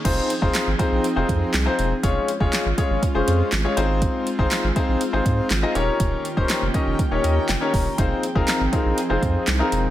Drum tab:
CC |x---------------|----------------|----------------|----------------|
HH |x-x-x-x-x-x-x-x-|x-x-x-x-x-x-x-x-|x-x-x-x-x-x-x-x-|x-x-x-x-x-x-x-o-|
CP |----x-------x---|----x-------x---|----x-------x---|----x-------x---|
SD |----o-------o---|----o-------o---|----o-------o---|----o-------o---|
BD |o--o--o---o-----|o--o--o-o-------|o--o--o---o-----|o--o--o-o-----o-|

CC |----------------|
HH |x-x-x-x-x-x-x-x-|
CP |----x-------x---|
SD |----o-------o---|
BD |o--o--o---o-----|